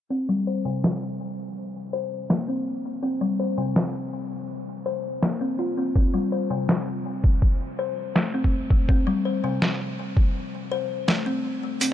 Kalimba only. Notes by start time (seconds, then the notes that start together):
0.10 C4
0.29 G3
0.47 C5
0.65 C3
1.93 C5
2.30 A#3
2.48 C4
3.03 C4
3.21 G3
3.40 C5
3.58 C3
4.86 C5
5.23 A#3
5.41 C4
5.59 F4
5.77 C4
5.95 C4
6.14 G3
6.32 C5
6.50 C3
7.79 C5
8.16 A3
8.34 C4
8.89 C4
9.07 G3
9.25 C5
9.44 C3
10.72 C5
11.08 A3
11.26 C4
11.81 C4